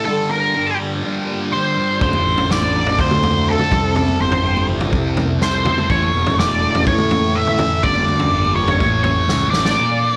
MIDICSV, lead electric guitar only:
0, 0, Header, 1, 2, 480
1, 0, Start_track
1, 0, Tempo, 484653
1, 79, Time_signature, 4, 2, 24, 8
1, 10068, End_track
2, 0, Start_track
2, 0, Title_t, "Lead electric guitar"
2, 0, Program_c, 0, 29
2, 51, Note_on_c, 0, 69, 76
2, 287, Note_off_c, 0, 69, 0
2, 302, Note_on_c, 0, 70, 66
2, 756, Note_off_c, 0, 70, 0
2, 1510, Note_on_c, 0, 72, 78
2, 1960, Note_off_c, 0, 72, 0
2, 2002, Note_on_c, 0, 72, 84
2, 2488, Note_off_c, 0, 72, 0
2, 2492, Note_on_c, 0, 74, 86
2, 2972, Note_off_c, 0, 74, 0
2, 2976, Note_on_c, 0, 72, 83
2, 3450, Note_on_c, 0, 69, 77
2, 3461, Note_off_c, 0, 72, 0
2, 3891, Note_off_c, 0, 69, 0
2, 3922, Note_on_c, 0, 69, 80
2, 4163, Note_on_c, 0, 72, 75
2, 4167, Note_off_c, 0, 69, 0
2, 4607, Note_off_c, 0, 72, 0
2, 5376, Note_on_c, 0, 72, 72
2, 5845, Note_off_c, 0, 72, 0
2, 5849, Note_on_c, 0, 73, 83
2, 6291, Note_off_c, 0, 73, 0
2, 6330, Note_on_c, 0, 74, 77
2, 6771, Note_off_c, 0, 74, 0
2, 6811, Note_on_c, 0, 73, 92
2, 7283, Note_on_c, 0, 76, 96
2, 7300, Note_off_c, 0, 73, 0
2, 7756, Note_on_c, 0, 74, 88
2, 7776, Note_off_c, 0, 76, 0
2, 8471, Note_off_c, 0, 74, 0
2, 8475, Note_on_c, 0, 73, 71
2, 8940, Note_off_c, 0, 73, 0
2, 8952, Note_on_c, 0, 73, 84
2, 9408, Note_off_c, 0, 73, 0
2, 9412, Note_on_c, 0, 74, 94
2, 10068, Note_off_c, 0, 74, 0
2, 10068, End_track
0, 0, End_of_file